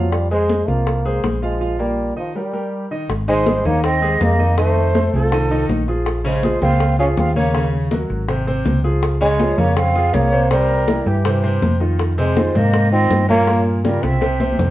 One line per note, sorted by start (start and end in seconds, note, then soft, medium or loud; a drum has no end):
0.00 0.62 F2 medium
0.00 0.24 F3 medium
0.00 0.14 F#3 medium
0.00 0.24 F4 medium
0.00 0.25 F5 medium
0.12 0.31 G3 medium
0.12 high bongo medium
0.12 high conga soft
0.31 0.69 G#3 loud
0.31 0.62 G#3 medium
0.31 0.62 G#4 medium
0.31 0.62 C5 medium
0.31 high conga soft
0.49 high bongo soft
0.49 high conga medium
0.68 1.20 C2 medium
0.68 0.98 F3 medium
0.68 1.24 A#3 medium
0.68 0.99 F4 medium
0.68 0.99 F5 medium
0.68 high bongo soft
0.68 high conga soft
0.87 high bongo medium
0.87 high conga soft
1.05 1.36 G#3 medium
1.05 1.36 G#4 medium
1.05 1.36 C5 medium
1.05 high bongo soft
1.05 high conga soft
1.24 2.11 A#1 medium
1.24 high bongo medium
1.24 low bongo medium
1.24 high conga medium
1.42 1.58 F3 medium
1.42 1.77 G#3 medium
1.42 1.58 F4 medium
1.42 1.58 F5 medium
1.42 high bongo soft
1.61 1.76 F3 medium
1.61 1.76 F4 medium
1.61 1.76 F5 medium
1.79 2.14 G3 medium
1.79 2.10 A#3 medium
1.79 2.10 F4 medium
1.79 2.10 A#4 medium
2.16 2.32 D#3 medium
2.16 2.34 F3 medium
2.16 2.32 D#4 medium
2.16 2.32 D#5 medium
2.35 2.51 G3 medium
2.35 2.87 G3 medium
2.35 2.51 G4 medium
2.35 2.51 A#4 medium
2.53 2.84 G3 medium
2.53 2.84 G4 medium
2.53 2.84 A#4 medium
2.91 3.06 D#3 medium
2.91 3.06 D#4 medium
2.91 3.07 D#5 medium
3.09 3.61 G#1 loud
3.09 high bongo medium
3.09 high conga soft
3.28 3.43 D#3 medium
3.28 3.68 G#3 loud
3.28 3.43 D#4 medium
3.28 3.67 C5 medium
3.28 3.44 D#5 medium
3.28 high conga soft
3.46 3.62 G3 medium
3.46 3.62 G4 medium
3.46 3.62 G#4 medium
3.46 high bongo medium
3.46 high conga medium
3.65 4.17 D#2 medium
3.65 3.96 D#3 medium
3.65 3.84 A#3 loud
3.65 3.96 D#4 medium
3.65 3.83 C#5 medium
3.65 3.96 D#5 medium
3.65 high bongo soft
3.65 high conga soft
3.65 low conga medium
3.84 4.23 C4 loud
3.84 4.21 D#5 medium
3.84 high bongo medium
3.84 high conga soft
4.02 4.32 G#3 medium
4.02 4.32 G4 medium
4.02 4.33 G#4 medium
4.02 high bongo soft
4.02 high conga soft
4.21 5.08 F2 medium
4.21 4.58 A#3 loud
4.21 4.58 D#5 medium
4.21 high bongo soft
4.21 low bongo medium
4.21 high conga medium
4.39 4.54 D#3 medium
4.39 4.54 D#4 medium
4.39 4.54 D#5 medium
4.39 high bongo soft
4.57 4.88 D#3 medium
4.57 5.10 A3 loud
4.57 4.88 D#4 medium
4.57 5.10 C5 medium
4.57 4.88 D#5 medium
4.57 high bongo medium
4.76 high conga soft
4.95 5.25 A3 medium
4.95 5.25 A4 medium
4.95 5.26 C5 medium
4.95 high bongo medium
4.95 high conga medium
5.14 5.65 C2 medium
5.14 5.66 F3 medium
5.14 5.66 A4 medium
5.14 high bongo soft
5.14 high conga soft
5.32 5.47 D#3 medium
5.32 5.47 D#4 medium
5.32 5.48 D#5 medium
5.32 high bongo medium
5.32 high conga soft
5.51 5.81 D#3 medium
5.51 5.81 D#4 medium
5.51 5.81 D#5 medium
5.51 high bongo soft
5.51 high conga soft
5.69 6.56 A#1 medium
5.69 high bongo soft
5.69 low bongo medium
5.69 high conga medium
5.88 6.18 F3 medium
5.88 6.18 F4 medium
5.88 6.19 G#4 medium
5.88 high bongo soft
5.88 high conga soft
6.06 high bongo medium
6.06 high conga soft
6.24 6.40 C#3 loud
6.24 6.60 G#3 medium
6.24 6.40 C#4 medium
6.24 6.60 C5 medium
6.24 6.40 C#5 medium
6.24 high conga soft
6.43 6.58 F3 medium
6.43 6.58 F4 medium
6.43 6.59 G#4 medium
6.43 high bongo medium
6.43 high conga medium
6.62 7.14 C#2 medium
6.62 6.92 C#3 medium
6.62 6.92 A#3 medium
6.62 6.97 C4 medium
6.62 6.92 C5 medium
6.62 6.96 F5 medium
6.62 high bongo soft
6.62 high conga soft
6.62 low conga medium
6.80 high bongo medium
6.80 high conga soft
6.99 7.29 F3 medium
6.99 7.08 C#4 loud
6.99 7.29 F4 medium
6.99 7.29 G#4 medium
6.99 7.05 F5 medium
6.99 high bongo soft
6.99 high conga soft
7.17 8.04 D#2 medium
7.17 7.35 C4 medium
7.17 7.35 F5 medium
7.17 high bongo soft
7.17 low bongo medium
7.17 high conga medium
7.36 7.51 C#3 medium
7.36 7.71 A#3 medium
7.36 7.51 C#4 medium
7.36 7.70 C#5 medium
7.36 7.51 C#5 medium
7.36 high bongo soft
7.36 high conga medium
7.54 7.85 C#3 medium
7.54 7.85 C#4 medium
7.54 7.85 C#5 medium
7.54 high bongo medium
7.54 high conga soft
7.73 high conga soft
7.91 8.22 F#3 medium
7.91 8.22 F#4 medium
7.91 8.22 A#4 medium
7.91 high bongo medium
7.91 high conga medium
8.10 8.62 G#1 loud
8.10 high bongo soft
8.10 high conga soft
8.28 8.44 C3 medium
8.28 8.44 C4 medium
8.28 8.44 C5 medium
8.28 high bongo medium
8.28 high conga soft
8.47 8.77 C3 medium
8.47 8.78 C4 medium
8.47 8.78 C5 medium
8.47 high bongo soft
8.47 high conga soft
8.65 9.52 C#2 medium
8.65 high bongo soft
8.65 low bongo medium
8.65 high conga medium
8.84 9.14 F3 medium
8.84 9.14 F4 medium
8.84 9.15 G#4 medium
8.84 high bongo soft
8.84 high conga soft
9.03 high bongo medium
9.03 high conga soft
9.21 9.36 C#3 medium
9.21 9.60 G#3 loud
9.21 9.36 C#4 medium
9.21 9.36 C#5 medium
9.21 9.59 C#5 medium
9.21 high conga soft
9.39 9.55 F3 medium
9.39 9.55 F4 medium
9.39 9.55 G#4 medium
9.39 high bongo medium
9.39 high conga medium
9.57 10.10 F2 medium
9.57 9.88 C#3 medium
9.57 9.77 A#3 medium
9.57 9.88 C#4 medium
9.57 9.89 C#5 medium
9.57 9.76 C#5 medium
9.57 high bongo soft
9.57 high conga soft
9.57 low conga medium
9.77 10.16 C4 loud
9.77 10.15 F5 medium
9.77 high bongo medium
9.77 high conga soft
9.77 low conga medium
9.95 10.26 F3 medium
9.95 10.26 F4 medium
9.95 10.26 G#4 medium
9.95 high bongo soft
9.95 high conga soft
10.14 11.01 C2 medium
10.14 10.51 A#3 medium
10.14 10.51 C#5 medium
10.14 high bongo soft
10.14 low bongo medium
10.14 high conga medium
10.32 10.48 C3 medium
10.32 10.48 C4 medium
10.32 10.48 C5 medium
10.32 high bongo soft
10.50 10.81 C3 medium
10.50 11.09 G3 medium
10.50 10.82 C4 medium
10.50 11.09 A#4 medium
10.50 10.82 C5 medium
10.50 high bongo medium
10.50 high conga soft
10.69 high conga soft
10.88 11.18 E3 medium
10.88 11.18 E4 medium
10.88 11.19 G4 medium
10.88 high bongo medium
10.88 high conga medium
11.06 11.58 G2 medium
11.06 11.63 E3 medium
11.06 11.62 G4 medium
11.06 high bongo soft
11.06 high conga soft
11.25 11.40 C3 medium
11.25 11.40 C4 medium
11.25 11.40 C5 medium
11.25 high bongo medium
11.25 high conga soft
11.43 11.74 C3 medium
11.43 11.74 C4 medium
11.43 11.74 C5 medium
11.43 high bongo soft
11.43 high conga soft
11.62 12.49 F2 medium
11.62 high bongo soft
11.62 low bongo medium
11.62 high conga medium
11.80 12.11 D#3 medium
11.80 12.11 D#4 medium
11.80 12.11 F4 medium
11.80 high bongo soft
11.80 high conga soft
11.99 high bongo medium
11.99 high conga soft
12.18 12.33 C3 medium
12.18 12.58 G#3 loud
12.18 12.33 C4 medium
12.18 12.33 C5 medium
12.18 12.58 C5 medium
12.18 high conga soft
12.36 12.52 D#3 medium
12.36 12.52 D#4 medium
12.36 12.52 F4 medium
12.36 high bongo medium
12.36 high conga loud
12.55 13.07 G#2 medium
12.55 12.85 C3 medium
12.55 12.92 A#3 loud
12.55 12.85 C4 medium
12.55 12.86 C5 medium
12.55 12.92 D#5 medium
12.55 high bongo soft
12.55 high conga soft
12.55 low conga medium
12.74 high bongo medium
12.74 high conga soft
12.92 13.22 D#3 medium
12.92 13.27 C4 loud
12.92 13.22 D#4 medium
12.92 13.22 F4 medium
12.92 13.27 D#5 medium
12.92 high bongo soft
12.92 high conga soft
13.11 13.97 G2 medium
13.11 high bongo soft
13.11 low bongo medium
13.11 high conga medium
13.28 13.44 A#2 medium
13.28 13.44 A#3 medium
13.28 13.64 A#3 loud
13.28 13.44 A#4 medium
13.28 13.64 C#5 medium
13.28 high bongo soft
13.28 high conga medium
13.47 13.78 A#2 medium
13.47 13.78 A#3 medium
13.47 13.78 A#4 medium
13.47 high bongo medium
13.47 high conga soft
13.66 high conga soft
13.84 14.15 C#3 medium
13.84 14.04 G3 medium
13.84 14.15 C#4 medium
13.84 14.15 F4 medium
13.84 14.05 A#4 medium
13.84 high bongo medium
13.84 high conga medium
14.03 14.55 C2 medium
14.03 14.59 C4 loud
14.03 14.59 E5 medium
14.03 high bongo medium
14.03 high conga soft
14.21 14.37 C3 medium
14.21 14.37 C4 medium
14.21 14.37 C5 medium
14.21 high bongo medium
14.21 high conga soft
14.40 14.70 C3 medium
14.40 14.70 C4 medium
14.40 14.70 C5 medium
14.40 high conga medium
14.52 high conga medium
14.59 14.70 F2 medium
14.59 low bongo medium
14.65 low conga medium